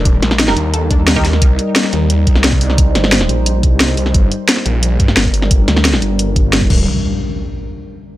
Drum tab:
CC |----------------|----------------|----------------|----------------|
HH |x-x-x-x-x-x-x-o-|x-x-x-x-x-x-x-o-|x-x-x-x-x-x-x-o-|x-x-x-x-x-x-x-o-|
SD |--oooo------o-oo|----oo-----oo--o|--oooo------o--o|----oo-----oo--o|
BD |o---------o--o--|o---------o--o--|o---------o-----|o---------o--o--|

CC |--------------x-|----------------|
HH |x-x-x-x-x-x-x---|----------------|
SD |--oooo------o---|----------------|
BD |o---------o--oo-|----------------|